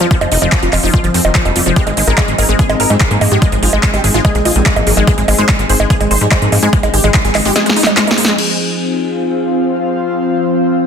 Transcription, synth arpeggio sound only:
0.01 F3
0.11 F3
0.21 F3
0.32 F3
0.42 F3
0.52 F3
0.63 F3
0.73 F4
0.83 F3
0.94 F4
1.04 F3
1.14 F3
1.25 D#3
1.35 F3
1.45 G3
1.56 G3
1.66 F3
1.76 G#3
1.87 G#3
1.97 G#3
2.07 G#3
2.18 G#3
2.28 G#3
2.38 G#4
2.49 G#3
2.59 G#4
2.70 G#3
2.80 G#3
2.90 G3
3.01 G#3
3.11 A#3
3.21 A#3
3.32 G#3
3.42 G#3
3.52 G#3
3.63 G#3
3.73 G#3
3.83 G#3
3.94 G#3
4.04 G#4
4.14 G#3
4.25 G#4
4.35 G#3
4.45 G#3
4.56 G3
4.66 G#3
4.76 A#3
4.87 A#3
4.97 G#3
5.07 G#3
5.18 G#3
5.28 G#3
5.38 G#3
5.49 G#3
5.59 G#3
5.69 G#4
5.80 G#3
5.90 G#4
6.01 G#3
6.11 G#3
6.21 G3
6.32 G#3
6.42 A#3
6.52 A#3
6.63 G#3
6.73 G#3
6.83 G#3
6.94 G#3
7.04 G#3
7.14 G#3
7.25 G#3
7.35 G#4
7.45 G#3
7.56 G#4
7.66 G#3
7.76 G#3
7.87 G3
7.97 G#3
8.07 A#3
8.18 A#3
8.28 G#3

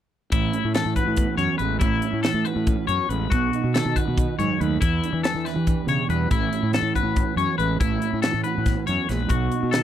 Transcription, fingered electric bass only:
0.33 A1
0.64 A2
0.85 A2
1.07 A2
1.38 F#2
1.60 A1
1.81 A1
2.13 A2
2.34 A2
2.56 A2
2.88 F#2
3.09 A1
3.32 B1
3.64 B2
3.86 B2
4.08 B2
4.39 G#2
4.61 D#2
4.82 E2
5.13 E3
5.35 E3
5.56 E3
5.87 C#3
6.09 E2
6.31 A1
6.63 A2
6.82 A2
7.03 A2
7.36 F#2
7.59 A1
7.80 A1
8.13 A2
8.34 A2
8.58 A2
8.88 F#2
9.09 A#1
9.30 B1
9.63 B2

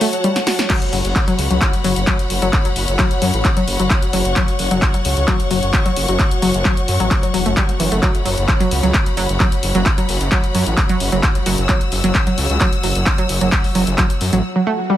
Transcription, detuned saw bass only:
0.93 F#1
1.05 F#1
1.38 C#2
1.51 C#2
1.84 F#1
1.96 F#1
2.30 F#1
2.42 F#1
2.76 F#1
2.88 F#1
3.22 F#2
3.34 A1
3.68 F#1
3.80 F#1
4.13 F#1
4.25 F#1
4.59 F#1
4.71 F#1
5.05 C#2
5.17 C#2
5.51 F#1
5.63 F#1
5.96 F#1
6.08 F#1
6.42 F#1
6.54 F#1
6.88 F#2
7.00 A1
7.34 E1
7.46 F#1
7.80 F#1
7.92 F#1
8.26 F#1
8.38 F#1
8.71 C#2
8.83 C#2
9.17 F#1
9.29 F#1
9.63 F#1
9.75 F#1
10.09 F#1
10.21 F#1
10.55 F#2
10.67 A1
11.00 F#1
11.12 F#1
11.46 F#1
11.58 F#1
11.92 F#1
12.04 F#1
12.38 C#2
12.50 C#2
12.84 F#1
12.96 F#1
13.29 F#1
13.41 F#1
13.75 F#1
13.87 F#1
14.21 F#2
14.33 A1

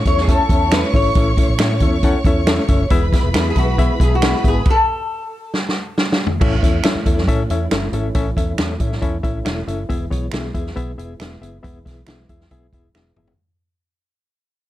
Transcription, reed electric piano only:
0.07 C#4 E4 A4 E5
0.29 C#4 E4 A4 E5
0.51 C#4 E4 A4 E5
0.72 C#4 E4 A4 E5
0.94 C#4 E4 A4 E5
1.17 A2 C#4 E4 A4 E5
1.38 C#4 E4 A4 E5
1.60 C#4 E4 A4 E5
1.82 C#4 E4 A4 E5
2.04 C#4 E4 A4 F#5
2.26 C#4 E4 A4 E5
2.47 C#4 E4 A4 E5
2.69 C#4 E4 A4 E5
2.91 E3 B3 E4 G#4 E5
3.13 B3 E4 G#4 E5
3.35 B3 E4 G#4 E5
3.57 B3 E4 G#4 E5
3.79 B3 E4 G#4 E5
4.00 B3 E4 G#4 E5
4.23 B3 E4 G#4 E5
4.44 B3 E4 G#4 E5
6.41 A2 C#4 E4 A4 E5
6.63 C#4 E4 A4 E5
6.84 C#4 E4 A4 E5
7.06 C#4 E4 A4 E5
7.28 C#4 E4 A4 E5
7.51 C#4 E4 A4 E5
7.72 C#4 E4 A4 E5
7.93 C#4 E4 A4 E5
8.15 A2 C#4 E4 A4 E5
8.37 C#4 E4 A4 E5
8.59 C#4 E4 A4 E5
8.80 C#4 E4 A4 E5
9.02 C#4 E4 A4 E5
9.23 C#4 E4 A4 E5
9.45 C#4 E4 A4 E5
9.67 C#4 E4 A4 E5
9.89 E3 B3 E4 G#4 E5
10.11 B3 E4 G#4 C#5
10.33 B3 E4 G#4 E5
10.54 B3 E4 G#4 E5
10.76 B3 E4 G#4 E5
10.98 B3 E4 G#4 E5
11.20 B3 E4 G#4 E5
11.41 B3 E4 G#4 E5
11.63 E3 B3 E4 G#4 E5
11.85 B3 E4 G#4 E5
12.07 B3 E4 G#4 E5
12.29 B3 E4 G#4 E5
12.51 B3 E4 G#4 E5
12.74 B3 E4 G#4 E5
12.95 B3 E4 G#4 E5
13.17 B3 E4 G#4 E5

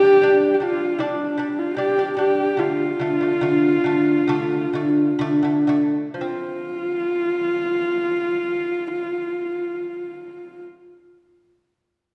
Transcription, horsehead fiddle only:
Already playing: G4
0.54 G4
0.63 F4
1.01 D4
1.59 F4
1.78 G4
2.19 G4
2.60 F4
6.19 F4

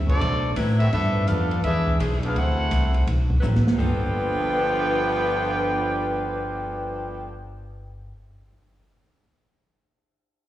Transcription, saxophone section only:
0.56 F#3 C4 E4 B4
1.99 F3 D4 E4 G#4
3.40 F#3 C4 E4 B4
3.77 F3 B3 F4 A4

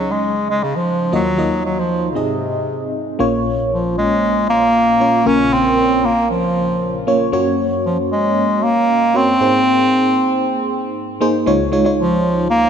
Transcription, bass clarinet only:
Already playing: F#3
0.11 G#3
0.50 G#3
0.63 C#3
0.76 F3
1.15 F#3
1.66 F#3
1.79 F3
2.11 C#3
2.19 C3
3.73 F3
3.98 G#3
4.50 A#3
5.27 C#4
5.53 C4
6.05 A#3
6.31 F3
7.86 F3
8.12 G#3
8.64 A#3
9.17 C4
12.00 F3
12.50 A#3

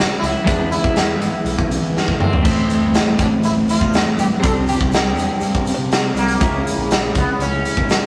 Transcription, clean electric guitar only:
Already playing: C#3 G#3 C#4 E4
0.44 E3 G#3 B3 E4
2.43 A2 E3 A3 C4 E4
4.40 C3 G3 C4 D4
6.40 C#3 G#3 C#4 E4

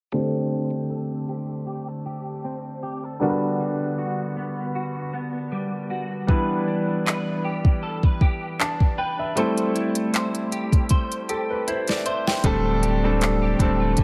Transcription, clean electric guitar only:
0.13 D3 A4
0.52 C4
0.90 A4
1.29 G4
1.67 G4
1.88 A4
2.06 G4
2.44 C4
2.83 G4
3.04 A4
3.21 D3 F#4
3.60 G3
3.98 F#4
4.37 B3
4.75 F#4
5.13 B3
5.52 G3
5.90 F#4
6.29 E3 B4
6.67 D4
7.06 B4
7.44 G4
7.83 A4
8.04 B4
8.22 G4
8.60 D4
8.98 B4
9.36 A3 C5
9.75 E4
10.14 C5
10.52 G4
10.90 C5
11.29 G4
11.67 E4
12.06 C5
12.44 D3
12.65 C4
12.83 G4
13.04 C4
13.21 A3
13.42 G4
13.59 C4
13.80 A3
13.98 D3

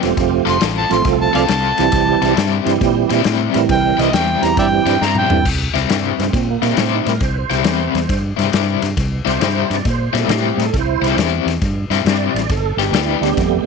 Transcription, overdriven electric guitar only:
0.46 F3 C4 F4 A4
0.61 F3 C4 F4 A4
1.33 F3 C4 F4 A4
1.49 F3 C4 F4 A4
2.22 C3 G3 C4 E4
2.37 C3 G3 C4 E4
3.10 C3 G3 C4 E4
3.24 C3 G3 C4 E4
3.97 C3 G3 C4 E4
4.13 C3 G3 C4 E4
4.86 C3 G3 C4 E4
5.02 C3 G3 C4 E4
5.74 C3 G3 C4 E4
5.90 C3 G3 C4 E4
6.62 C3 G3 C4 E4
6.77 C3 G3 C4 E4
7.50 C3 G3 C4 E4
7.63 C3 G3 C4 E4
8.37 C3 G3 C4 E4
8.51 C3 G3 C4 E4
9.25 C3 G3 C4 E4
9.40 C3 G3 C4 E4
10.13 C3 G3 C4 E4
10.28 C3 G3 C4 E4
11.02 C3 G3 C4 E4
11.18 C3 G3 C4 E4
11.91 C3 G3 C4 E4
12.05 C3 G3 C4 E4
12.79 G3 B3 D4 G4
12.93 G3 B3 D4 G4

